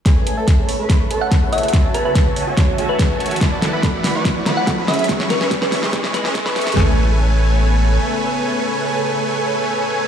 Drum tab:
HH |x---x---x---o---x---x---x---xxxx|x---x---x---o---x---x---x---xxxx|x---x---x---o---x---x---x---xxxx|x---x---x---o---x---x---x---xxxx|
SD |o-------o-------o-------o-------|o-------o-------o-------o-------|o---o---o---o---o---o---o---o---|o-o-o-o-o-o-o-o-o-o-o-o-o-o-o-o-|
FT |--------------------------------|--------------------------------|--------------------------------|--------------------------------|
BD |o-------o-------o-------o-------|o-------o-------o-------o-------|o-------o-------o-------o-------|o-------o-------o-------o-------|

HH |--------------------------------|--------------------------------|
SD |o-------------------------------|--------------------------------|
FT |o-------------------------------|--------------------------------|
BD |--------------------------------|--------------------------------|